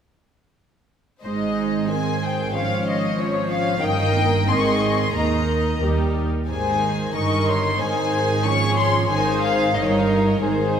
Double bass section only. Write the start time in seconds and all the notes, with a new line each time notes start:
1.25 G#1
2.54 G#1
3.82 G1
4.50 G#1
5.16 D#2
5.83 D#2
6.50 G#1
7.16 G1
7.81 G#1
9.11 G#1
9.77 G1
10.43 G#1